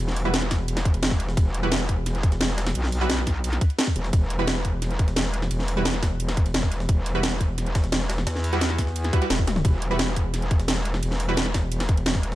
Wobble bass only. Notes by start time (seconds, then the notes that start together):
0.00 E1
1.37 E1
2.75 B1
3.96 E1
4.13 E1
5.51 E1
6.89 E1
8.27 E2
9.65 E1
11.03 E1